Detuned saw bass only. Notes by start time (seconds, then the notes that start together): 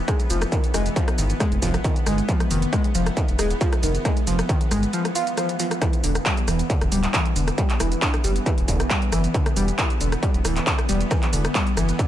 0.30 F1
0.74 F1
1.18 G1
1.52 F1
1.62 F1
2.06 G1
2.51 F1
2.95 F1
3.28 F1
3.39 D#1
3.83 F1
4.27 F1
4.71 G1
6.04 E1
6.48 E1
6.81 E1
6.92 D1
7.36 E1
7.80 E1
8.24 F#1
8.58 E1
8.68 E1
9.12 F#1
9.57 E1
10.01 E1
10.34 E1
10.45 D1
10.89 E1
11.33 E1
11.77 F#1